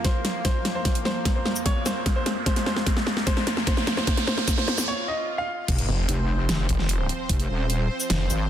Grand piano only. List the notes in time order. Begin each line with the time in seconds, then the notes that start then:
0.05 C5
0.45 C5
0.75 C5
1.05 C5
1.35 C5
1.66 C#5
1.86 C5
2.16 C5
2.46 C5
2.66 C5
3.27 C5
3.67 C5
3.97 C5
4.27 C5
4.58 C5
4.88 C#5
5.08 D#5
5.38 F5